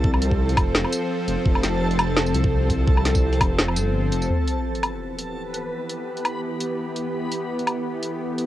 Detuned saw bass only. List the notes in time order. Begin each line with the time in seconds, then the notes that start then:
Already playing: C2
0.57 F1
0.75 F1
1.28 F1
1.46 F1
2.34 C2
3.41 F1
3.59 F1
3.77 G1
4.12 F1